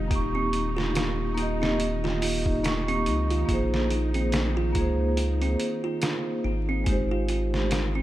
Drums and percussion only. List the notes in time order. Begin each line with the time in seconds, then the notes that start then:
0.11 kick, closed hi-hat
0.53 closed hi-hat
0.78 snare
0.95 snare, closed hi-hat
1.38 closed hi-hat
1.63 snare
1.80 closed hi-hat
2.05 snare
2.22 open hi-hat
2.46 kick
2.64 snare, closed hi-hat
2.88 closed hi-hat
3.06 closed hi-hat
3.30 closed hi-hat
3.49 kick, closed hi-hat
3.74 snare
3.90 closed hi-hat
4.14 closed hi-hat
4.32 snare, closed hi-hat
4.75 kick, closed hi-hat
5.17 closed hi-hat
5.42 closed hi-hat
5.60 closed hi-hat
6.02 snare, closed hi-hat
6.86 kick, closed hi-hat
7.28 closed hi-hat
7.54 snare
7.71 snare, closed hi-hat